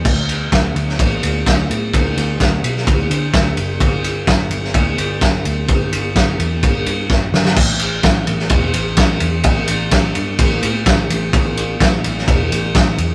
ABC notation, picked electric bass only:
X:1
M:4/4
L:1/8
Q:1/4=128
K:Amix
V:1 name="Picked electric bass" clef=bass
D,,2 D,, D,, A,,, D,, D,, A,, | D,, D,, D,, B,, D,, D, D,, F,,, | G,,,2 G,,, G,,, D,, G,,, G,,, D,, | G,,, G,,, G,,, E,, G,,, G,, G,,, G,,, |
A,,,2 A,,, A,,, E,,, A,,, A,,, E,, | A,,, A,,, A,,, G,, A,,, A,, A,,, A,,, | A,,,2 A,,, A,,, E,,, A,,, A,,, E,, |]